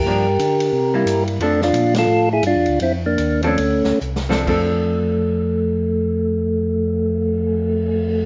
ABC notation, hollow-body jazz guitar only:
X:1
M:4/4
L:1/8
Q:"Swing" 1/4=146
K:F
V:1 name="Hollow-body jazz guitar"
[F,B,D] z4 [G,B,E]3 | [F,CDA]4- [F,CDA] z3 | z3 [F,CDA] z3 [F,CDA] | [F,CDA]8- |
[F,CDA]8 |]